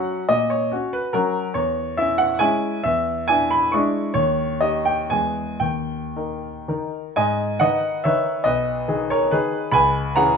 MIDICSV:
0, 0, Header, 1, 2, 480
1, 0, Start_track
1, 0, Key_signature, 5, "minor"
1, 0, Tempo, 428878
1, 302, Time_signature, 3, 2, 24, 8
1, 4633, Tempo, 478469
1, 5593, Tempo, 530504
1, 7033, Tempo, 475813
1, 7513, Tempo, 446097
1, 8473, Tempo, 422833
1, 11101, End_track
2, 0, Start_track
2, 0, Title_t, "Grand piano"
2, 0, Program_c, 0, 0
2, 0, Note_on_c, 0, 54, 49
2, 0, Note_on_c, 0, 61, 53
2, 0, Note_on_c, 0, 66, 56
2, 0, Note_on_c, 0, 78, 66
2, 261, Note_off_c, 0, 61, 0
2, 262, Note_off_c, 0, 54, 0
2, 264, Note_off_c, 0, 66, 0
2, 303, Note_off_c, 0, 78, 0
2, 319, Note_on_c, 0, 46, 60
2, 320, Note_on_c, 0, 75, 82
2, 513, Control_c, 0, 64, 127
2, 545, Note_off_c, 0, 75, 0
2, 558, Note_on_c, 0, 73, 65
2, 778, Note_off_c, 0, 46, 0
2, 798, Control_c, 0, 64, 0
2, 802, Note_on_c, 0, 61, 48
2, 814, Note_on_c, 0, 66, 49
2, 1041, Note_off_c, 0, 73, 0
2, 1042, Note_on_c, 0, 71, 81
2, 1231, Note_off_c, 0, 61, 0
2, 1237, Note_off_c, 0, 66, 0
2, 1265, Note_on_c, 0, 70, 81
2, 1272, Note_off_c, 0, 71, 0
2, 1272, Note_on_c, 0, 54, 57
2, 1275, Note_on_c, 0, 61, 55
2, 1284, Note_on_c, 0, 66, 58
2, 1687, Note_off_c, 0, 54, 0
2, 1689, Note_off_c, 0, 61, 0
2, 1693, Note_off_c, 0, 66, 0
2, 1726, Note_on_c, 0, 73, 78
2, 1729, Note_off_c, 0, 70, 0
2, 1731, Note_on_c, 0, 40, 63
2, 1921, Control_c, 0, 64, 127
2, 2198, Note_off_c, 0, 40, 0
2, 2210, Note_off_c, 0, 73, 0
2, 2210, Note_on_c, 0, 76, 97
2, 2219, Note_on_c, 0, 64, 57
2, 2222, Note_on_c, 0, 61, 51
2, 2440, Note_on_c, 0, 78, 89
2, 2460, Note_off_c, 0, 76, 0
2, 2658, Note_off_c, 0, 64, 0
2, 2660, Note_off_c, 0, 61, 0
2, 2675, Note_on_c, 0, 80, 93
2, 2681, Note_on_c, 0, 56, 60
2, 2689, Note_off_c, 0, 78, 0
2, 2689, Note_on_c, 0, 61, 59
2, 2691, Note_on_c, 0, 64, 62
2, 2711, Control_c, 0, 64, 0
2, 3114, Note_off_c, 0, 56, 0
2, 3118, Note_off_c, 0, 61, 0
2, 3119, Note_off_c, 0, 64, 0
2, 3155, Note_off_c, 0, 80, 0
2, 3173, Note_on_c, 0, 76, 91
2, 3188, Note_on_c, 0, 40, 70
2, 3411, Control_c, 0, 64, 127
2, 3651, Note_off_c, 0, 40, 0
2, 3658, Note_off_c, 0, 76, 0
2, 3667, Note_on_c, 0, 80, 100
2, 3675, Note_on_c, 0, 62, 49
2, 3687, Note_on_c, 0, 64, 57
2, 3915, Note_off_c, 0, 80, 0
2, 3924, Note_on_c, 0, 83, 95
2, 4122, Note_off_c, 0, 62, 0
2, 4128, Note_off_c, 0, 64, 0
2, 4162, Note_on_c, 0, 85, 86
2, 4164, Note_off_c, 0, 83, 0
2, 4170, Control_c, 0, 64, 0
2, 4182, Note_on_c, 0, 62, 61
2, 4183, Note_on_c, 0, 56, 58
2, 4186, Note_on_c, 0, 64, 59
2, 4600, Note_off_c, 0, 62, 0
2, 4601, Note_off_c, 0, 56, 0
2, 4603, Note_off_c, 0, 64, 0
2, 4632, Note_on_c, 0, 73, 90
2, 4635, Note_off_c, 0, 85, 0
2, 4640, Note_on_c, 0, 39, 65
2, 4818, Control_c, 0, 64, 127
2, 5084, Note_off_c, 0, 39, 0
2, 5093, Note_off_c, 0, 73, 0
2, 5101, Note_on_c, 0, 75, 72
2, 5103, Note_on_c, 0, 63, 47
2, 5104, Note_on_c, 0, 67, 48
2, 5347, Note_off_c, 0, 75, 0
2, 5348, Note_on_c, 0, 79, 79
2, 5557, Note_off_c, 0, 63, 0
2, 5558, Note_off_c, 0, 67, 0
2, 5595, Note_off_c, 0, 79, 0
2, 5596, Note_on_c, 0, 80, 72
2, 5603, Note_on_c, 0, 40, 54
2, 5605, Control_c, 0, 64, 0
2, 5606, Note_on_c, 0, 56, 41
2, 5610, Note_on_c, 0, 59, 40
2, 5620, Note_on_c, 0, 68, 39
2, 5787, Control_c, 0, 64, 127
2, 6028, Note_off_c, 0, 56, 0
2, 6030, Note_off_c, 0, 59, 0
2, 6035, Note_off_c, 0, 68, 0
2, 6045, Note_on_c, 0, 79, 67
2, 6049, Note_off_c, 0, 40, 0
2, 6051, Note_on_c, 0, 39, 50
2, 6059, Note_off_c, 0, 80, 0
2, 6073, Control_c, 0, 64, 0
2, 6287, Control_c, 0, 64, 127
2, 6536, Note_off_c, 0, 39, 0
2, 6559, Note_on_c, 0, 63, 36
2, 6560, Note_on_c, 0, 70, 38
2, 6999, Note_off_c, 0, 63, 0
2, 6999, Note_off_c, 0, 70, 0
2, 7027, Note_on_c, 0, 51, 43
2, 7032, Note_on_c, 0, 63, 44
2, 7033, Note_on_c, 0, 70, 48
2, 7045, Control_c, 0, 64, 0
2, 7275, Note_off_c, 0, 79, 0
2, 7469, Note_off_c, 0, 51, 0
2, 7472, Note_off_c, 0, 63, 0
2, 7472, Note_off_c, 0, 70, 0
2, 7510, Note_on_c, 0, 80, 84
2, 7515, Note_on_c, 0, 75, 66
2, 7516, Note_on_c, 0, 44, 62
2, 7739, Control_c, 0, 64, 127
2, 7957, Note_off_c, 0, 75, 0
2, 7976, Note_off_c, 0, 44, 0
2, 7977, Note_on_c, 0, 78, 85
2, 7985, Note_on_c, 0, 63, 49
2, 7987, Note_on_c, 0, 51, 48
2, 7988, Note_off_c, 0, 80, 0
2, 7991, Note_on_c, 0, 75, 68
2, 7998, Note_on_c, 0, 71, 52
2, 8001, Control_c, 0, 64, 0
2, 8427, Note_off_c, 0, 51, 0
2, 8427, Note_off_c, 0, 63, 0
2, 8433, Note_off_c, 0, 71, 0
2, 8439, Note_off_c, 0, 75, 0
2, 8454, Note_on_c, 0, 76, 88
2, 8465, Note_on_c, 0, 73, 65
2, 8466, Note_off_c, 0, 78, 0
2, 8468, Note_on_c, 0, 51, 53
2, 8474, Note_on_c, 0, 63, 49
2, 8476, Note_on_c, 0, 71, 58
2, 8890, Note_off_c, 0, 51, 0
2, 8894, Note_off_c, 0, 63, 0
2, 8895, Note_off_c, 0, 71, 0
2, 8901, Note_off_c, 0, 73, 0
2, 8908, Note_on_c, 0, 75, 85
2, 8923, Note_on_c, 0, 35, 60
2, 8924, Note_on_c, 0, 71, 65
2, 8929, Note_off_c, 0, 76, 0
2, 9152, Control_c, 0, 64, 127
2, 9396, Note_off_c, 0, 35, 0
2, 9410, Note_on_c, 0, 51, 48
2, 9414, Note_on_c, 0, 63, 49
2, 9415, Note_on_c, 0, 68, 53
2, 9618, Note_off_c, 0, 71, 0
2, 9655, Note_off_c, 0, 75, 0
2, 9661, Note_on_c, 0, 73, 85
2, 9674, Note_on_c, 0, 70, 66
2, 9866, Note_off_c, 0, 51, 0
2, 9869, Note_off_c, 0, 63, 0
2, 9869, Note_off_c, 0, 68, 0
2, 9901, Note_off_c, 0, 70, 0
2, 9901, Note_on_c, 0, 71, 88
2, 9906, Note_on_c, 0, 51, 50
2, 9912, Note_off_c, 0, 73, 0
2, 9915, Note_on_c, 0, 63, 53
2, 9917, Note_on_c, 0, 68, 64
2, 9929, Control_c, 0, 64, 0
2, 10335, Note_off_c, 0, 51, 0
2, 10340, Note_off_c, 0, 63, 0
2, 10353, Note_off_c, 0, 68, 0
2, 10357, Note_on_c, 0, 83, 110
2, 10361, Note_on_c, 0, 37, 71
2, 10378, Note_off_c, 0, 71, 0
2, 10378, Note_on_c, 0, 80, 87
2, 10609, Control_c, 0, 64, 127
2, 10826, Note_off_c, 0, 80, 0
2, 10836, Note_off_c, 0, 37, 0
2, 10849, Note_off_c, 0, 83, 0
2, 10857, Note_on_c, 0, 82, 94
2, 10865, Note_on_c, 0, 52, 59
2, 10865, Note_on_c, 0, 61, 56
2, 10867, Note_on_c, 0, 78, 71
2, 10875, Note_on_c, 0, 68, 62
2, 11101, Note_off_c, 0, 52, 0
2, 11101, Note_off_c, 0, 61, 0
2, 11101, Note_off_c, 0, 68, 0
2, 11101, Note_off_c, 0, 78, 0
2, 11101, Note_off_c, 0, 82, 0
2, 11101, End_track
0, 0, End_of_file